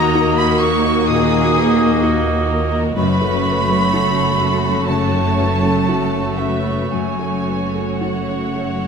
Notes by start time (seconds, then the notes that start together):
Already playing: D#2 D#3 A#3 D#4 F#4 A#4 B4 D#5 F#5 A#5 D#6
0.13 F#4 A#4 F#5
0.38 D#5 B5 D#6
0.60 A#4 C#6
0.84 F#4 D#5
1.07 A#2 A#3 D#4 G#4 D#5 D#6
1.31 A#3 A#4
1.55 F#4 B4
1.78 A#4
2.02 F#4 F#5
2.26 D#5 D#6
2.49 A#4
2.73 F#4 D#5
2.95 F#1 F#2 A3 C#4 F#4 B4 C#5 B5
3.20 A3 A4
3.45 F#4 B4
3.69 A4
3.91 F#4 A4 F#5
4.16 C#5 C#6
4.40 A4
4.64 F#4 C#5
4.87 C#3 A3 C#5 A5
5.13 A3 A4
5.38 F#4 B4
5.62 A4
5.87 F#4 A4 F#5
6.13 C#5 C#6
6.37 A4 B4 E5
6.65 F#4 C#5
6.90 F#1 F#2 A3 C#4 F#4 C#5 G#5
7.19 A3 A4
7.47 F#4 B4
7.74 A4
7.99 A3 F#4 C#5 F#5
8.28 C#5 C#6
8.55 A4
8.82 F#4 C#5